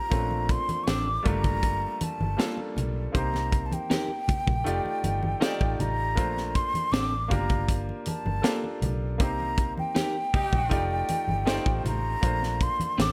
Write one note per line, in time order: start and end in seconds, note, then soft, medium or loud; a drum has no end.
0.00 0.10 F3 medium
0.00 0.12 A3 medium
0.00 0.11 C4 medium
0.00 0.13 D#4 medium
0.00 0.13 G4 medium
0.00 0.53 A#5 medium
0.10 0.56 A#1 medium
0.10 1.24 F3 medium
0.10 1.24 A3 medium
0.10 1.22 A#3 medium
0.10 1.25 C4 medium
0.10 0.18 C#4 medium
0.10 kick loud
0.10 closed hi-hat medium
0.10 muted conga soft
0.18 1.22 D4 medium
0.31 muted conga soft
0.49 0.85 C6 loud
0.49 kick medium
0.49 closed hi-hat medium
0.68 muted fingered electric bass stroke soft
0.68 closed hi-hat soft
0.68 high conga medium
0.84 1.07 C4 medium
0.84 0.89 C#6 medium
0.84 closed hi-hat medium
0.88 1.17 A1 medium
0.88 1.07 D4 medium
0.88 1.08 A4 medium
0.88 1.29 D6 loud
0.88 snare loud
0.88 muted conga soft
0.88 high conga medium
1.06 muted conga soft
1.23 1.85 G1 loud
1.23 2.29 G3 medium
1.23 2.31 A3 medium
1.23 2.30 A#3 medium
1.23 2.30 D4 medium
1.23 2.30 F4 medium
1.23 kick medium
1.23 closed hi-hat medium
1.23 low conga medium
1.27 2.05 A#5 loud
1.44 kick loud
1.44 closed hi-hat medium
1.44 low conga medium
1.63 kick medium
1.63 closed hi-hat medium
1.63 muted conga soft
2.01 2.78 A5 medium
2.01 muted fingered electric bass stroke soft
2.01 closed hi-hat medium
2.01 high conga medium
2.20 2.35 G1 medium
2.20 high conga medium
2.37 3.08 G3 medium
2.37 3.08 A#3 medium
2.37 2.59 A#3 medium
2.37 3.09 D4 medium
2.37 3.09 F4 medium
2.37 2.59 F4 medium
2.37 3.09 A4 medium
2.37 2.59 A4 medium
2.37 snare loud
2.37 closed hi-hat loud
2.37 muted conga soft
2.57 muted conga soft
2.77 3.07 B1 medium
2.77 closed hi-hat medium
2.77 low conga medium
3.12 3.74 C2 loud
3.12 4.54 A#3 medium
3.12 4.54 C4 medium
3.12 4.54 D#4 medium
3.12 4.55 G4 medium
3.12 4.55 C5 medium
3.12 kick loud
3.12 closed hi-hat medium
3.12 muted conga soft
3.17 3.67 A#5 medium
3.34 snare soft
3.34 muted conga soft
3.52 kick medium
3.52 closed hi-hat medium
3.66 3.75 A5 medium
3.71 5.82 G5 loud
3.71 closed hi-hat soft
3.71 high conga medium
3.90 4.10 D#4 medium
3.90 4.10 G4 medium
3.90 4.11 A#4 medium
3.90 snare loud
3.90 closed hi-hat medium
3.90 muted conga soft
3.90 high conga medium
4.09 muted conga soft
4.28 muted fingered electric bass stroke soft
4.28 kick medium
4.28 closed hi-hat medium
4.28 low conga medium
4.47 4.62 A#1 medium
4.47 kick loud
4.47 low conga medium
4.64 4.81 F1 loud
4.64 5.35 A3 medium
4.64 5.36 D#4 medium
4.64 5.36 F4 medium
4.64 5.36 G4 medium
4.64 5.37 D5 loud
4.64 closed hi-hat medium
4.64 muted conga soft
4.85 muted fingered electric bass stroke soft
4.85 muted conga soft
5.04 5.33 G1 medium
5.04 closed hi-hat medium
5.04 high conga medium
5.23 high conga medium
5.40 6.11 A3 medium
5.40 6.11 D#4 medium
5.40 5.61 D#4 medium
5.40 6.12 F4 medium
5.40 6.12 G4 medium
5.40 5.62 A4 loud
5.40 6.12 D5 loud
5.40 5.62 D5 loud
5.40 snare loud
5.40 closed hi-hat medium
5.40 muted conga soft
5.60 5.76 A1 medium
5.60 kick medium
5.60 muted conga soft
5.79 6.17 A1 medium
5.79 6.57 A#5 loud
5.79 closed hi-hat medium
5.79 low conga medium
6.15 6.62 A#1 loud
6.15 7.31 A3 medium
6.15 7.27 A#3 medium
6.15 7.27 D4 medium
6.15 7.28 F4 medium
6.15 7.31 C5 medium
6.15 kick loud
6.15 closed hi-hat medium
6.37 snare soft
6.55 6.94 C6 loud
6.55 kick medium
6.55 closed hi-hat medium
6.74 muted fingered electric bass stroke soft
6.74 closed hi-hat soft
6.74 high conga medium
6.92 7.33 A1 medium
6.92 7.13 C4 medium
6.92 7.13 D4 medium
6.92 7.13 A4 medium
6.92 7.33 D6 loud
6.92 snare loud
6.92 closed hi-hat loud
6.92 high conga medium
7.11 muted conga soft
7.28 7.91 G1 loud
7.28 8.35 A#3 medium
7.28 8.35 D4 medium
7.28 8.36 F4 medium
7.28 8.36 G4 medium
7.28 8.36 A#4 medium
7.28 7.80 A#5 loud
7.28 kick medium
7.28 closed hi-hat medium
7.28 low conga medium
7.49 kick loud
7.49 closed hi-hat medium
7.49 low conga medium
7.69 kick medium
7.69 closed hi-hat medium
7.89 muted conga soft
8.06 8.79 A5 medium
8.06 muted fingered electric bass stroke soft
8.06 closed hi-hat medium
8.06 high conga medium
8.25 8.40 G1 medium
8.25 high conga medium
8.42 8.64 A#3 medium
8.42 9.14 D4 medium
8.42 9.14 F4 medium
8.42 8.64 F4 medium
8.42 9.14 G4 medium
8.42 9.13 A4 medium
8.42 8.64 A4 medium
8.42 9.15 A#4 medium
8.42 snare loud
8.42 closed hi-hat medium
8.64 muted conga soft
8.82 9.20 B1 medium
8.82 closed hi-hat medium
8.82 low conga medium
9.18 9.80 C2 loud
9.18 10.60 A#3 medium
9.18 10.60 C4 medium
9.18 10.60 D#4 medium
9.18 10.61 G4 medium
9.18 10.61 C5 medium
9.18 9.74 A#5 loud
9.18 kick loud
9.18 closed hi-hat medium
9.40 muted conga soft
9.57 kick medium
9.57 closed hi-hat medium
9.77 11.82 G5 loud
9.77 high conga medium
9.95 10.15 D#4 medium
9.95 10.16 G4 medium
9.95 10.16 A#4 medium
9.95 snare loud
9.95 closed hi-hat medium
9.95 muted conga soft
9.95 high conga medium
10.33 10.88 G3 loud
10.33 10.88 D#4 medium
10.33 10.88 G4 loud
10.33 muted fingered electric bass stroke soft
10.33 kick loud
10.33 open hi-hat medium
10.33 low conga medium
10.53 10.68 A#1 medium
10.53 kick medium
10.53 low conga medium
10.69 11.01 F1 loud
10.69 11.41 A3 medium
10.69 11.41 D#4 medium
10.69 11.41 F4 medium
10.69 11.42 G4 medium
10.69 11.42 D5 loud
10.69 kick medium
10.69 closed hi-hat medium
10.69 muted conga soft
10.91 muted conga soft
11.08 muted fingered electric bass stroke soft
11.08 closed hi-hat medium
11.08 high conga medium
11.27 11.58 G1 medium
11.27 high conga medium
11.45 12.17 A3 medium
11.45 12.17 D#4 medium
11.45 11.67 D#4 medium
11.45 12.17 F4 medium
11.45 12.18 G4 medium
11.45 11.67 A4 medium
11.45 12.18 C5 loud
11.45 11.68 D5 medium
11.45 snare loud
11.45 closed hi-hat medium
11.66 11.81 A1 medium
11.66 kick medium
11.66 muted conga soft
11.85 12.15 A1 medium
11.85 12.64 A#5 loud
11.85 closed hi-hat medium
11.85 low conga medium
12.21 12.68 A#1 medium
12.21 13.12 A3 medium
12.21 13.12 A#3 medium
12.21 13.12 D4 medium
12.21 13.12 F4 medium
12.21 13.12 C5 medium
12.21 kick loud
12.21 closed hi-hat medium
12.21 muted conga soft
12.42 snare soft
12.42 muted conga soft
12.61 13.00 C6 loud
12.61 kick medium
12.61 closed hi-hat medium
12.80 muted fingered electric bass stroke soft
12.80 closed hi-hat medium
12.80 high conga medium
12.98 13.12 A1 medium
12.98 13.12 C4 medium
12.98 13.12 D4 medium
12.98 13.12 A4 medium
12.98 13.09 D6 loud
12.98 snare loud
12.98 closed hi-hat medium
12.98 muted conga soft
12.98 high conga medium